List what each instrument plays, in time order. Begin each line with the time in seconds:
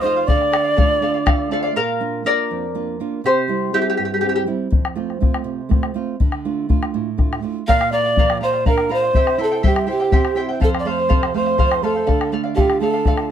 Already playing: nylon-string guitar F2
0.01 nylon-string guitar A3 D#4 F4, pan flute C5, quena C6
0.05 charango F4 C5 D#5 F5
0.16 charango F4 C5 F5
0.26 nylon-string guitar D3, charango A4 D5 F5, pan flute D5, quena D6, bombo rim, bombo low
0.41 bombo rim
0.52 charango A4 D5 F5, bombo rim
0.64 charango D5 F5
0.76 nylon-string guitar A3 D4 F4, charango A4 D5 F5, bombo low
1.02 nylon-string guitar A3 D4 F4, charango A4 D5 F5
1.14 charango D5 F5
1.26 charango A4 D5 F5, bombo rim, bombo low
1.51 nylon-string guitar A3 D4 F4, charango A4 D5 F5
1.63 charango D5 F5, bombo rim
1.76 nylon-string guitar A#2, charango A#4 F5
2.00 nylon-string guitar A#3 D4 F4
2.25 nylon-string guitar A#3 D4 F4, charango A#4 D5
2.51 nylon-string guitar F2
2.75 nylon-string guitar A#3 D4 F4
3.00 nylon-string guitar A#3 D4 F4
3.24 nylon-string guitar C3, charango G4 C5
3.48 nylon-string guitar G3 C4 E4
3.73 nylon-string guitar G3 C4 E4, charango E4 G4
3.82 charango G4
3.90 charango G4
3.97 nylon-string guitar G2, charango G4
4.05 charango G4
4.14 charango G4
4.21 nylon-string guitar G3 C4 E4, charango G4
4.29 charango G4
4.36 charango G4
4.46 nylon-string guitar G3 C4 E4
4.72 bombo low
4.85 bombo rim
4.95 nylon-string guitar A3 C4 F4, bombo rim
5.10 bombo rim
5.20 nylon-string guitar A3 C4 F4, bombo rim, bombo low
5.34 bombo rim
5.44 nylon-string guitar C3
5.69 nylon-string guitar A3 C4 F4, bombo rim, bombo low
5.83 bombo rim
5.94 nylon-string guitar A3 C4 F4
6.20 nylon-string guitar D3, bombo low
6.32 bombo rim
6.45 nylon-string guitar A3 D4 F4
6.69 nylon-string guitar A3 D4 F4, bombo low
6.83 bombo rim
6.94 nylon-string guitar A2
7.17 nylon-string guitar A3 D4 F4, bombo rim, bombo low
7.33 bombo rim
7.42 nylon-string guitar A3 D4 F4
7.67 nylon-string guitar A#2, charango A#4 D5 F5, pan flute F5, quena F6, bombo low
7.81 bombo rim
7.91 nylon-string guitar F4, charango A#4 D5 F5, pan flute D5, quena D6
8.05 charango D5 F5
8.16 nylon-string guitar F3, charango A#4 D5 F5, bombo low
8.30 bombo rim
8.41 nylon-string guitar F4, charango A#4 D5 F5, pan flute C5, quena C6
8.53 charango D5 F5, bombo rim
8.65 nylon-string guitar D4, charango A#4 D5 F5, pan flute A#4, quena A#5, bombo low
8.78 bombo rim
8.89 nylon-string guitar F4, charango A#4 D5 F5, pan flute C5, quena C6
9.03 charango D5 F5
9.13 nylon-string guitar C3, charango E4 G4 C5 E5 G5, bombo low
9.27 bombo rim
9.38 nylon-string guitar E4, charango E4 C5 E5 G5, quena A5
9.43 pan flute A4
9.51 charango E4 C5 G5
9.63 nylon-string guitar G3, charango E4 G4 C5 E5 G5, pan flute G4, quena G5, bombo low
9.76 bombo rim
9.87 nylon-string guitar E4, charango E4 C5 E5 G5, quena G5
9.91 pan flute G4
10.00 charango E4 C5 G5, bombo rim
10.11 nylon-string guitar C4, charango E4 G4 C5 E5 G5, bombo low
10.25 bombo rim
10.35 nylon-string guitar E4, charango E4 C5 E5 G5
10.49 charango E4 C5 G5
10.60 nylon-string guitar F2, charango A4 C5 F5, pan flute A4, quena A5, bombo low
10.75 bombo rim
10.79 pan flute D5, quena D6
10.85 nylon-string guitar A3, charango A4 C5 F5, pan flute C5, quena C6
10.98 charango C5 F5
11.09 nylon-string guitar C3, charango A4 C5 F5, bombo low
11.23 bombo rim
11.34 nylon-string guitar A3, charango A4 C5 F5, pan flute C5, quena C6
11.47 charango C5 F5, bombo rim
11.58 nylon-string guitar F3, charango A4 C5 F5, bombo low
11.72 bombo rim
11.82 nylon-string guitar A3, charango A4 C5 F5, pan flute A4, quena A5
11.95 charango C5 F5
12.07 nylon-string guitar D3, charango A4 D5 F5, bombo rim, bombo low
12.21 bombo rim
12.32 nylon-string guitar A3, charango A4 D5 F5
12.44 charango D5 F5
12.55 nylon-string guitar F4, pan flute G4, charango A4 D5 F5, quena A5, bombo rim, bombo low
12.60 quena G5
12.70 bombo rim
12.80 nylon-string guitar A3, pan flute A4, charango A4 D5 F5, quena A5
12.93 charango D5 F5, bombo rim
13.05 nylon-string guitar F4, charango A4 D5 F5, bombo rim, bombo low
13.17 bombo rim